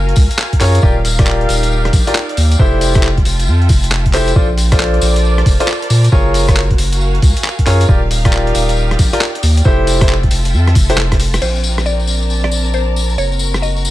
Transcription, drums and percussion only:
0.09 closed hi-hat
0.16 kick, open hi-hat, tambourine
0.30 closed hi-hat, tambourine
0.38 clap, tambourine
0.53 kick, closed hi-hat
0.61 clap, open hi-hat, tambourine
0.75 closed hi-hat, tambourine
0.82 kick, tambourine
1.05 open hi-hat, tambourine
1.19 kick, cross-stick, closed hi-hat
1.27 clap, tambourine
1.41 closed hi-hat
1.49 open hi-hat, tambourine
1.63 closed hi-hat, tambourine
1.71 tambourine
1.85 cross-stick, closed hi-hat
1.93 kick, open hi-hat, tambourine
2.07 closed hi-hat, tambourine
2.15 clap, tambourine
2.29 closed hi-hat
2.37 open hi-hat, tambourine
2.51 closed hi-hat, tambourine
2.59 kick, tambourine
2.81 open hi-hat, tambourine
2.95 kick, cross-stick, closed hi-hat, tambourine
3.02 clap, tambourine
3.18 kick, closed hi-hat
3.25 open hi-hat, tambourine
3.40 closed hi-hat, tambourine
3.48 tambourine
3.62 closed hi-hat
3.69 kick, open hi-hat, tambourine
3.83 closed hi-hat, tambourine
3.92 clap
4.06 kick, closed hi-hat
4.13 clap, open hi-hat, tambourine
4.27 closed hi-hat, tambourine
4.36 kick, tambourine
4.58 open hi-hat, tambourine
4.72 kick, cross-stick, closed hi-hat, tambourine
4.80 clap, tambourine
4.94 closed hi-hat
5.01 open hi-hat, tambourine
5.16 closed hi-hat, tambourine
5.25 tambourine
5.38 cross-stick, closed hi-hat
5.46 kick, open hi-hat, tambourine
5.60 closed hi-hat, tambourine
5.68 clap, tambourine
5.82 closed hi-hat
5.90 open hi-hat, tambourine
6.04 closed hi-hat, tambourine
6.12 kick, tambourine
6.34 open hi-hat, tambourine
6.49 kick, cross-stick, closed hi-hat, tambourine
6.56 clap, tambourine
6.71 kick, closed hi-hat
6.78 open hi-hat, tambourine
6.93 closed hi-hat, tambourine
7.01 tambourine
7.15 closed hi-hat
7.22 kick, open hi-hat, tambourine
7.37 closed hi-hat, tambourine
7.44 clap, tambourine
7.59 kick, closed hi-hat
7.67 clap, open hi-hat, tambourine
7.80 closed hi-hat, tambourine
7.89 kick, tambourine
8.11 open hi-hat, tambourine
8.25 kick, cross-stick, closed hi-hat, tambourine
8.32 clap, tambourine
8.47 closed hi-hat
8.55 open hi-hat, tambourine
8.69 closed hi-hat, tambourine
8.77 tambourine
8.91 cross-stick, closed hi-hat
8.99 kick, open hi-hat, tambourine
9.13 closed hi-hat, tambourine
9.21 clap, tambourine
9.35 closed hi-hat
9.43 open hi-hat, tambourine
9.57 closed hi-hat, tambourine
9.64 kick, tambourine
9.87 open hi-hat, tambourine
10.01 kick, cross-stick, closed hi-hat, tambourine
10.09 clap, tambourine
10.23 kick, closed hi-hat
10.31 open hi-hat, tambourine
10.45 closed hi-hat, tambourine
10.54 tambourine
10.67 cross-stick, closed hi-hat
10.75 kick, open hi-hat, tambourine
10.90 closed hi-hat, tambourine
10.97 cross-stick, clap
11.12 kick, cross-stick, closed hi-hat
11.20 open hi-hat, tambourine
11.33 cross-stick, closed hi-hat, tambourine
11.42 crash, tambourine
11.55 tambourine
11.64 tambourine
11.78 cross-stick, tambourine
11.86 tambourine
12.00 tambourine
12.07 tambourine
12.22 tambourine
12.30 tambourine
12.44 cross-stick
12.52 tambourine
12.66 tambourine
12.73 tambourine
12.96 tambourine
13.10 tambourine
13.18 tambourine
13.32 tambourine
13.39 tambourine
13.54 cross-stick, tambourine
13.63 tambourine
13.77 tambourine
13.85 tambourine

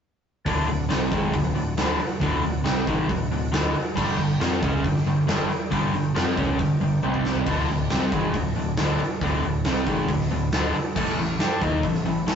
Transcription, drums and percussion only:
0.46 kick, open hi-hat
0.69 open hi-hat
0.90 snare, open hi-hat
1.01 snare
1.12 kick, open hi-hat
1.33 kick, open hi-hat
1.56 open hi-hat
1.77 snare, open hi-hat
2.00 open hi-hat
2.21 kick, open hi-hat
2.43 open hi-hat
2.65 snare, open hi-hat
2.87 kick, open hi-hat
3.09 kick, open hi-hat
3.32 open hi-hat
3.53 snare, open hi-hat
3.75 open hi-hat
3.97 kick, crash
4.19 open hi-hat
4.41 snare, open hi-hat
4.63 kick, open hi-hat
4.84 kick, open hi-hat
4.96 snare
5.07 open hi-hat
5.28 snare, open hi-hat
5.50 open hi-hat
5.72 kick, open hi-hat
5.94 open hi-hat
6.16 snare, open hi-hat
6.37 kick, open hi-hat
6.59 kick, open hi-hat
6.81 open hi-hat
7.03 high tom
7.14 kick
7.25 snare
7.35 floor tom
7.46 kick, open hi-hat, crash
7.68 open hi-hat
7.90 snare, open hi-hat
8.12 kick, open hi-hat
8.34 kick, open hi-hat
8.55 open hi-hat
8.77 snare, open hi-hat
8.99 open hi-hat
9.21 kick, open hi-hat
9.44 open hi-hat
9.64 snare, open hi-hat
9.76 snare
9.87 kick, open hi-hat
10.08 kick, open hi-hat
10.20 snare
10.30 open hi-hat
10.52 snare, open hi-hat
10.74 open hi-hat
10.96 kick, crash
11.18 open hi-hat
11.40 snare, open hi-hat
11.51 snare
11.61 kick, open hi-hat
11.83 kick, open hi-hat
11.94 snare
12.05 open hi-hat
12.27 snare, open hi-hat

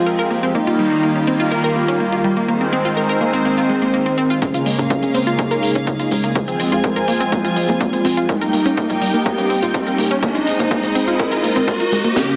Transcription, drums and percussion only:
4.42 kick, closed hi-hat
4.54 closed hi-hat
4.66 open hi-hat
4.79 closed hi-hat
4.90 kick, closed hi-hat
5.03 closed hi-hat
5.14 open hi-hat
5.27 closed hi-hat
5.39 kick, closed hi-hat
5.51 closed hi-hat
5.63 open hi-hat
5.75 closed hi-hat
5.87 kick, closed hi-hat
5.99 closed hi-hat
6.11 open hi-hat
6.24 closed hi-hat
6.35 kick, closed hi-hat
6.48 closed hi-hat
6.60 open hi-hat
6.72 closed hi-hat
6.84 kick, closed hi-hat
6.96 closed hi-hat
7.08 open hi-hat
7.20 closed hi-hat
7.32 kick, closed hi-hat
7.45 closed hi-hat
7.56 open hi-hat
7.69 closed hi-hat
7.81 kick, closed hi-hat
7.93 closed hi-hat
8.05 open hi-hat
8.29 kick, closed hi-hat
8.41 closed hi-hat
8.53 open hi-hat
8.66 closed hi-hat
8.77 kick, closed hi-hat
8.90 closed hi-hat
9.02 open hi-hat
9.14 closed hi-hat
9.26 kick, closed hi-hat
9.38 closed hi-hat
9.50 open hi-hat
9.62 closed hi-hat
9.74 kick, closed hi-hat
9.87 closed hi-hat
9.98 open hi-hat
10.11 closed hi-hat
10.23 kick, closed hi-hat
10.35 closed hi-hat
10.47 open hi-hat
10.59 closed hi-hat
10.71 kick, closed hi-hat
10.83 closed hi-hat
10.95 open hi-hat
11.08 closed hi-hat
11.19 kick, closed hi-hat
11.32 closed hi-hat
11.44 open hi-hat
11.56 closed hi-hat
11.68 kick, closed hi-hat
11.80 closed hi-hat
11.92 open hi-hat
12.04 closed hi-hat
12.16 kick, snare, closed hi-hat
12.29 closed hi-hat

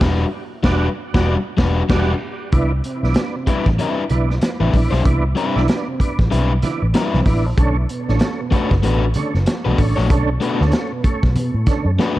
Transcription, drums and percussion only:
0.01 kick, snare, crash
0.64 kick, snare
1.14 kick, snare
1.58 kick, snare
1.89 kick, snare, crash
2.52 kick, closed hi-hat, muted conga
2.84 closed hi-hat
3.04 snare
3.14 snare, closed hi-hat, high conga
3.47 kick, closed hi-hat, muted conga
3.66 kick, snare
3.79 closed hi-hat, muted conga
4.10 closed hi-hat, muted conga, low conga
4.30 snare
4.41 snare, closed hi-hat, high conga
4.62 high conga
4.73 kick, open hi-hat
4.93 snare
5.05 kick, closed hi-hat, muted conga
5.37 closed hi-hat
5.57 snare
5.68 snare, closed hi-hat, high conga
6.00 kick, closed hi-hat
6.19 kick, snare
6.32 closed hi-hat, muted conga
6.62 snare, closed hi-hat, muted conga, low conga
6.94 snare, closed hi-hat, high conga
7.14 snare, high conga
7.25 kick, snare, open hi-hat
7.58 kick, closed hi-hat, muted conga
7.89 closed hi-hat
8.09 snare
8.19 snare, closed hi-hat, high conga
8.52 kick, closed hi-hat, muted conga
8.71 kick, snare
8.83 closed hi-hat, muted conga
9.14 closed hi-hat, muted conga, low conga
9.34 snare
9.46 snare, closed hi-hat, high conga
9.67 high conga
9.78 kick, open hi-hat
9.98 snare
10.10 kick, closed hi-hat, muted conga
10.42 closed hi-hat
10.61 snare
10.72 snare, closed hi-hat, high conga
11.04 kick, closed hi-hat
11.23 kick, snare
11.36 closed hi-hat, muted conga
11.66 kick, snare, closed hi-hat, muted conga, low conga
11.99 snare, high conga

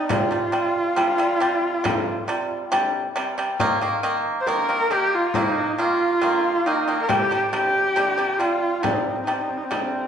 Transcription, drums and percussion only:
0.10 frame drum
0.76 frame drum
0.97 frame drum
1.42 frame drum
1.85 frame drum
2.51 frame drum
2.73 frame drum
3.60 frame drum
4.25 frame drum
4.47 frame drum
4.91 frame drum
5.34 frame drum
6.00 frame drum
6.22 frame drum
7.09 frame drum
7.53 frame drum
7.75 frame drum
7.97 frame drum
8.41 frame drum
8.84 frame drum
9.50 frame drum
9.72 frame drum

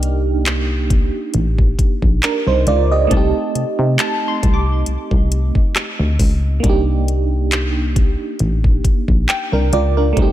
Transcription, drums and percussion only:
0.03 closed hi-hat
0.46 clap, closed hi-hat
0.90 kick, closed hi-hat
1.34 closed hi-hat
1.58 kick
1.79 kick, closed hi-hat
2.02 kick
2.23 clap, closed hi-hat
2.67 closed hi-hat
3.11 kick, closed hi-hat
3.55 closed hi-hat
3.99 clap, closed hi-hat
4.43 kick, closed hi-hat
4.86 closed hi-hat
5.11 kick
5.32 closed hi-hat
5.55 kick
5.76 cross-stick, clap, closed hi-hat
6.19 kick, open hi-hat
6.64 kick, closed hi-hat
7.08 closed hi-hat
7.52 clap, closed hi-hat
7.96 kick, closed hi-hat
8.39 closed hi-hat
8.64 kick
8.84 kick, closed hi-hat
9.08 kick
9.29 clap, closed hi-hat
9.73 closed hi-hat
10.17 kick, closed hi-hat

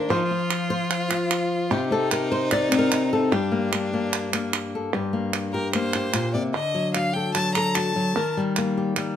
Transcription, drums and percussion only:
0.51 clap
0.91 clap
1.11 clap
1.31 clap
2.11 clap
2.51 clap
2.72 clap
2.92 clap
3.73 clap
4.13 clap
4.33 clap
4.53 clap
5.33 clap
5.73 clap
5.93 clap
6.14 clap
6.95 clap
7.35 clap
7.55 clap
7.75 clap
8.56 clap
8.96 clap

